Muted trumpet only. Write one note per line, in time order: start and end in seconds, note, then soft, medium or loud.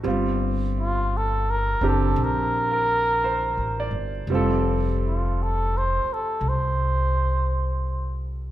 0.80 1.19 F4 medium
1.17 1.52 A4 medium
1.51 1.90 A#4 medium
1.88 2.25 A4 medium
2.24 3.98 A#4 medium
5.06 5.44 F4 medium
5.43 5.79 A4 medium
5.78 6.15 C5 medium
6.14 6.50 A4 medium
6.49 8.24 C5 medium